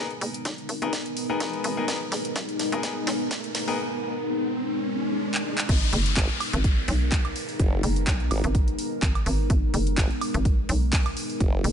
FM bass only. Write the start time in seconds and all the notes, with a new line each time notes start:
Already playing: F#1
0.21 F#1
0.45 B1
0.69 G#1
0.82 G#1
1.40 G#1
1.64 G#1
1.88 G#1
2.12 F#1
2.36 G#1
2.72 G#1
3.07 B1
5.69 G#1
5.93 F#1
6.53 G#1
6.88 B1
7.83 F#1
8.07 B1
8.44 G#1
9.02 G#1
9.26 G#1
9.50 G#1
9.74 F#1
10.34 G#1
10.69 B1
11.64 F#1